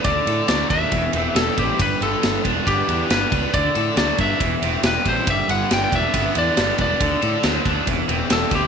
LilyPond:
<<
  \new Staff \with { instrumentName = "Lead electric guitar" } { \time 4/4 \key g \major \tempo 4 = 138 d''4 d''8 e''4. a'8 g'8 | b'8 a'4 r8 g'4 b'4 | d''4 d''8 e''4. b'8 c''8 | e''8 fis''8 g''16 g''16 e''4 d''4 d''8~ |
d''4. r4. a'8 g'8 | }
  \new Staff \with { instrumentName = "Overdriven electric guitar" } { \time 4/4 \key g \major d8 a'8 fis'8 d'8 e,8 c'8 g'8 c''8 | g8 b'8 b8 d'8 b'8 d'8 b8 b'8 | d8 a'8 fis'8 d'8 e,8 c'8 g'8 c''8 | g8 b'8 b8 d'8 b'8 d'8 b8 b'8 |
d8 a'8 fis'8 d'8 e,8 c'8 g'8 c''8 | }
  \new Staff \with { instrumentName = "Overdriven electric guitar" } { \clef bass \time 4/4 \key g \major d8 d8 fis8 d'8 e8 e8 g8 e'8 | g,8 d8 g8 d'8 b8 d8 g8 d'8 | d8 d8 fis8 d'8 e8 e8 g8 e'8 | g,8 d8 g8 d'8 b8 d8 g8 d'8 |
d8 d8 fis8 d'8 e8 e8 g8 e'8 | }
  \new Staff \with { instrumentName = "Picked electric bass" } { \clef bass \time 4/4 \key g \major d,8 a,8 d,8 dis,8 e,,8 e,,8 e,,8 a,,8 | g,,8 g,,8 g,,8 e,,8 g,,8 e,8 g,,8 cis,8 | d,8 a,8 d,8 g,8 e,,8 e,,8 e,,8 a,,8 | g,,8 g,,8 g,,8 e,,8 g,,8 e,8 g,,8 e,,8 |
d,8 a,8 d,8 d,8 e,,8 e,,8 e,,8 d,8 | }
  \new DrumStaff \with { instrumentName = "Drums" } \drummode { \time 4/4 <bd cymr>8 cymr8 <cymr sn>8 <bd cymr>8 <bd cymr>8 cymr8 <cymr sn>8 <bd cymr>8 | <bd cymr>8 cymr8 <cymr sn>8 <bd cymr>8 <bd cymr>8 cymr8 <cymr sn>8 <bd cymr>8 | <bd cymr>8 cymr8 <cymr sn>8 <bd cymr>8 <bd cymr>8 cymr8 <cymr sn>8 <bd cymr>8 | <bd cymr>8 cymr8 <cymr sn>8 <bd cymr>8 <bd cymr>8 cymr8 <cymr sn>8 <bd cymr>8 |
<bd cymr>8 cymr8 <cymr sn>8 <bd cymr>8 <bd cymr>8 cymr8 <cymr sn>8 <bd cymr>8 | }
>>